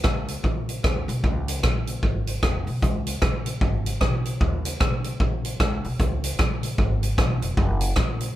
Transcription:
0.04 upright bass C#2, kick, cross-stick
0.28 closed hi-hat
0.44 upright bass A#1, kick
0.69 closed hi-hat
0.84 upright bass D#2, kick, cross-stick
1.08 upright bass B1, closed hi-hat
1.24 upright bass C#2, kick
1.48 closed hi-hat
1.63 upright bass A#1, kick, cross-stick
1.87 closed hi-hat
2.03 upright bass G#1, kick
2.27 closed hi-hat
2.43 upright bass F1, kick, cross-stick
2.67 upright bass B1, open hi-hat
2.82 upright bass C#2, kick, hi-hat pedal
3.07 closed hi-hat
3.22 upright bass A#1, kick, cross-stick
3.46 closed hi-hat
3.61 upright bass G#1, kick
3.86 closed hi-hat
4.01 upright bass B1, kick, cross-stick
4.25 closed hi-hat
4.41 upright bass D#2, kick
4.65 closed hi-hat
4.80 upright bass B1, kick, cross-stick
5.04 closed hi-hat
5.20 upright bass A#1, kick
5.45 closed hi-hat
5.60 upright bass C#2, kick, cross-stick
5.84 upright bass B1, open hi-hat
5.99 upright bass C#2, kick, hi-hat pedal
6.24 closed hi-hat
6.39 upright bass A#1, kick, cross-stick
6.63 closed hi-hat
6.78 upright bass G#1, kick
7.03 closed hi-hat
7.18 upright bass B1, kick, cross-stick
7.42 upright bass F1, closed hi-hat
7.57 upright bass F#1, kick
7.81 closed hi-hat
7.96 upright bass A#1, kick, cross-stick
8.20 closed hi-hat

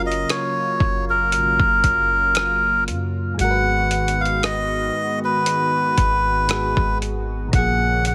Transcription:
Already playing: 808-style bass F#1, analog synth pad C#3 F#3 A#3 F4, synth keys F#3 C#4 F4 A#4
0.06 melodica D#5
0.12 closed hi-hat
0.29 melodica C#5, cross-stick, closed hi-hat
0.80 808-style bass F#1, kick
1.10 melodica A#4
1.32 808-style bass G#1, closed hi-hat
1.60 808-style bass F#1, kick
1.84 808-style bass F#1, kick, closed hi-hat
2.35 cross-stick, closed hi-hat
2.88 808-style bass F#2, closed hi-hat
3.34 synth keys G#2 G#3
3.39 808-style bass G#1, analog synth pad D#3 G#3 B3 F#4, synth keys F#4, melodica F#5, closed hi-hat
3.44 synth keys A#4
3.51 synth keys B4
3.91 closed hi-hat
4.08 closed hi-hat
4.21 melodica F5
4.25 closed hi-hat
4.43 melodica D#5, cross-stick, closed hi-hat
5.24 melodica B4
5.46 closed hi-hat
5.98 808-style bass G#1, kick, closed hi-hat
6.47 synth keys G#2 G#3 F#4, cross-stick, closed hi-hat
6.52 synth keys G#4
6.77 808-style bass G#1, kick
7.02 closed hi-hat
7.48 synth keys A#2 A#3
7.53 808-style bass A#1, analog synth pad C#3 F3 A#3 C#4, synth keys F3, melodica F#5, kick, closed hi-hat
7.58 synth keys G#4
8.05 melodica F#5, closed hi-hat

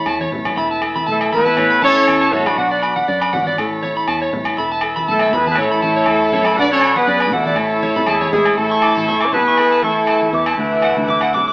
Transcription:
Already playing: nylon-string guitar A2 E4 A4, transistor combo organ C#5 A5 B5
0.06 fingered electric bass E2, clean electric guitar A5, high conga, low agogo
0.20 clean electric guitar C#5, high conga
0.32 fingered electric bass A1, nylon-string guitar E3, low conga
0.45 low conga, low agogo
0.56 fingered electric bass E1, nylon-string guitar E3 A3 E4, transistor combo organ E5 A5, clean electric guitar B5, muted nylon-string guitar stroke
0.71 clean electric guitar A5
0.82 nylon-string guitar A4, low agogo
0.96 clean electric guitar B5, high conga
1.07 fingered electric bass B1, horn section A3 A4, clean electric guitar A5
1.12 trumpet E4
1.21 clean electric guitar E5, low agogo
1.32 fingered electric bass G#1, nylon-string guitar A3, horn section B3 B4, clean electric guitar B5, high conga
1.36 trumpet E4
1.45 clean electric guitar A5, high conga
1.57 fingered electric bass A1, nylon-string guitar A2 A4, clean electric guitar C#5, transistor combo organ C#5 A5 B5, low agogo
1.70 clean electric guitar B5
1.82 horn section C#4 C#5, nylon-string guitar E4, trumpet A4, clean electric guitar A5, high conga
1.96 clean electric guitar C#5
2.08 fingered electric bass E2, low agogo
2.21 clean electric guitar A5
2.32 fingered electric bass A1, nylon-string guitar E3, horn section A3 A4, trumpet F#4, clean electric guitar C#5, low conga
2.46 horn section F#3 F#4, trumpet D4, clean electric guitar B5, low agogo
2.58 fingered electric bass B1, nylon-string guitar B2 D4, transistor combo organ D5 F#5, clean electric guitar F#5
2.71 clean electric guitar D5
2.83 nylon-string guitar D4, clean electric guitar B5, low agogo
2.96 clean electric guitar F#5, high conga
3.08 fingered electric bass F#2, clean electric guitar D5
3.21 clean electric guitar B5, low agogo
3.33 fingered electric bass G#1, nylon-string guitar F#3, clean electric guitar F#5, high conga, low conga
3.46 clean electric guitar D5, high conga
3.58 fingered electric bass A1, nylon-string guitar A2 A4, transistor combo organ C#5 A5, low agogo
3.83 nylon-string guitar E4, clean electric guitar C#5, high conga
3.97 clean electric guitar B5
4.08 fingered electric bass E2, clean electric guitar A5, low agogo
4.22 clean electric guitar C#5
4.33 fingered electric bass A1, nylon-string guitar E3, low conga
4.45 low agogo
4.57 fingered electric bass E1, nylon-string guitar E3 A4, transistor combo organ E5, clean electric guitar B5
4.72 clean electric guitar A5
4.81 nylon-string guitar A4, low agogo
4.96 clean electric guitar B5, high conga
5.08 fingered electric bass B1, horn section A3 A4, trumpet E4, clean electric guitar A5
5.19 clean electric guitar E5, low agogo
5.32 fingered electric bass E2, nylon-string guitar A3, horn section B3 B4, trumpet G#4, clean electric guitar B5, high conga, low conga
5.47 horn section B3 B4, trumpet G#4, clean electric guitar A5, high conga
5.55 fingered electric bass A1, nylon-string guitar A2 E4, transistor combo organ C#5, clean electric guitar C#5, low agogo
5.59 horn section A3 A4, trumpet E4
5.72 clean electric guitar B5
5.82 nylon-string guitar E4, clean electric guitar A5, high conga
5.96 clean electric guitar C#5
6.06 fingered electric bass E2, low agogo
6.32 fingered electric bass F#2, clean electric guitar C#5, low conga
6.45 clean electric guitar B5, low agogo
6.55 fingered electric bass B1, nylon-string guitar B2 F#4, horn section D4 D5, trumpet B4, transistor combo organ D5 F#5 B5, clean electric guitar F#5
6.71 horn section C#4 C#5, trumpet A4, clean electric guitar D5
6.81 clean electric guitar B5, low agogo
6.96 horn section B3 B4, trumpet G#4, clean electric guitar F#5, high conga
7.07 fingered electric bass F#2, nylon-string guitar C#3, clean electric guitar D5
7.20 clean electric guitar B5, low agogo
7.32 fingered electric bass B2, nylon-string guitar B2, horn section A3 A4, trumpet E4, clean electric guitar F#5, high conga, low conga
7.46 clean electric guitar D5, high conga
7.56 fingered electric bass A1, nylon-string guitar A2 E4, transistor combo organ C#5 A5 B5, low agogo
7.83 nylon-string guitar E4, clean electric guitar C#5, high conga
7.96 clean electric guitar B5, low conga
8.06 fingered electric bass E2, horn section G#3 G#4, trumpet E4, clean electric guitar A5, low agogo
8.21 clean electric guitar C#5, high conga
8.31 fingered electric bass A1, nylon-string guitar E3, horn section G#3 G#4, trumpet E4, low conga
8.45 low agogo
8.57 fingered electric bass A1, nylon-string guitar A2 C#4 E4, horn section A3 A4, trumpet E4, transistor combo organ E5 G#5 C#6, muted clean electric guitar stroke
8.71 clean electric guitar C#6
8.82 nylon-string guitar E4, clean electric guitar D6, low agogo
8.97 fingered electric bass A1, clean electric guitar A5, high conga
9.08 nylon-string guitar E4, clean electric guitar C#6, low conga
9.21 clean electric guitar D6, low agogo
9.25 horn section C#4 C#5, trumpet A4
9.33 nylon-string guitar E3, horn section B3 B4, trumpet G#4, clean electric guitar A5, low conga
9.48 clean electric guitar C#6
9.58 nylon-string guitar A4, low agogo
9.72 clean electric guitar A5
9.82 nylon-string guitar A2 E4, horn section A3 A4, trumpet E4, clean electric guitar C#6, high conga
10.07 nylon-string guitar B2, clean electric guitar A5, low agogo
10.22 high conga
10.32 fingered electric bass E2, nylon-string guitar C#3, horn section E3 E4, trumpet A3, clean electric guitar D6, low conga
10.46 clean electric guitar A5, low agogo
10.58 fingered electric bass D2, nylon-string guitar D3 A3, transistor combo organ E5 F#5 D6
10.82 nylon-string guitar A3, clean electric guitar F#5, low agogo
10.96 fingered electric bass D2, high conga
11.08 nylon-string guitar A3, clean electric guitar D6, low conga
11.21 clean electric guitar F#5, low agogo
11.34 nylon-string guitar F#3 A3, clean electric guitar D6, low conga
11.48 clean electric guitar D6

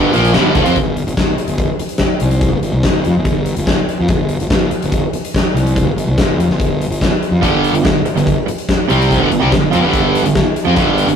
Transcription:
Already playing: fingered electric bass G1, overdriven electric guitar G2 D3 G3
0.14 fingered electric bass A#1, overdriven electric guitar A#2 F3 A#3, closed hi-hat
0.25 closed hi-hat
0.34 fingered electric bass G1, overdriven electric guitar G2 D3 G3, snare, closed hi-hat
0.55 fingered electric bass D2, overdriven electric guitar D3 A3, kick, closed hi-hat
0.66 fingered electric bass F2, overdriven electric guitar F3 C4, closed hi-hat
0.76 fingered electric bass G1, kick, closed hi-hat
0.97 closed hi-hat
1.07 fingered electric bass G1, closed hi-hat
1.17 fingered electric bass G1, kick, snare, closed hi-hat
1.38 muted fingered electric bass stroke, closed hi-hat
1.48 fingered electric bass G1, closed hi-hat
1.58 kick, closed hi-hat
1.79 muted fingered electric bass stroke, closed hi-hat
1.89 closed hi-hat
1.98 kick, snare, closed hi-hat
2.20 fingered electric bass C2, closed hi-hat
2.31 closed hi-hat
2.41 kick, closed hi-hat
2.51 fingered electric bass G1
2.63 fingered electric bass G1, closed hi-hat
2.73 fingered electric bass C2
2.83 fingered electric bass G1, kick, snare, closed hi-hat
3.04 fingered electric bass F2, closed hi-hat
3.17 fingered electric bass G1
3.25 kick, closed hi-hat
3.46 closed hi-hat
3.57 fingered electric bass G1, closed hi-hat
3.67 kick, snare, closed hi-hat
3.89 closed hi-hat
4.00 fingered electric bass F2
4.08 fingered electric bass G1, kick, closed hi-hat
4.29 closed hi-hat
4.40 fingered electric bass G1, closed hi-hat
4.50 fingered electric bass G1, kick, snare, closed hi-hat
4.71 muted fingered electric bass stroke, closed hi-hat
4.82 fingered electric bass G1, closed hi-hat
4.92 kick, closed hi-hat
5.13 muted fingered electric bass stroke, closed hi-hat
5.25 closed hi-hat
5.34 kick, snare, closed hi-hat
5.54 fingered electric bass C2, closed hi-hat
5.67 closed hi-hat
5.76 kick, closed hi-hat
5.85 fingered electric bass G1
5.96 fingered electric bass G1, closed hi-hat
6.07 fingered electric bass C2
6.18 fingered electric bass G1, kick, snare, closed hi-hat
6.37 fingered electric bass F2, closed hi-hat
6.48 fingered electric bass G1, snare
6.60 kick, closed hi-hat
6.81 closed hi-hat
6.90 fingered electric bass G1, closed hi-hat
7.01 kick, snare, closed hi-hat
7.23 closed hi-hat
7.31 fingered electric bass F2
7.43 fingered electric bass G1, overdriven electric guitar G2 D3 G3, kick, closed hi-hat
7.64 closed hi-hat
7.74 fingered electric bass G1, overdriven electric guitar G2 D3, closed hi-hat
7.85 fingered electric bass G1, overdriven electric guitar G2 D3, kick, snare, closed hi-hat
8.05 muted distorted electric guitar stroke, muted fingered electric bass stroke, muted overdriven electric guitar stroke, closed hi-hat
8.16 fingered electric bass G1, overdriven electric guitar G2 D3, snare, closed hi-hat
8.27 kick, closed hi-hat
8.46 muted distorted electric guitar stroke, muted overdriven electric guitar stroke, muted fingered electric bass stroke, closed hi-hat
8.58 closed hi-hat
8.69 kick, snare, closed hi-hat
8.90 fingered electric bass C2, overdriven electric guitar C3 G3 C4, closed hi-hat
9.02 closed hi-hat
9.11 kick, closed hi-hat
9.21 fingered electric bass G1, overdriven electric guitar G2 D3
9.32 fingered electric bass G1, overdriven electric guitar G2 D3, closed hi-hat
9.42 fingered electric bass C2, overdriven electric guitar C3 G3
9.52 fingered electric bass G1, overdriven electric guitar G2 D3, kick, snare, closed hi-hat
9.73 fingered electric bass F2, overdriven electric guitar F3 C4, closed hi-hat
9.80 fingered electric bass G1, distorted electric guitar G2 D3 G3
9.84 overdriven electric guitar G2 D3 G3
9.93 kick, closed hi-hat
10.15 closed hi-hat
10.26 fingered electric bass G1, overdriven electric guitar G2 D3, closed hi-hat
10.35 kick, snare, closed hi-hat
10.56 closed hi-hat
10.66 fingered electric bass F2, overdriven electric guitar F3 C4
10.76 fingered electric bass G1, overdriven electric guitar G2 D3 G3, kick, closed hi-hat
10.98 closed hi-hat
11.08 fingered electric bass G1, overdriven electric guitar G2 D3, closed hi-hat

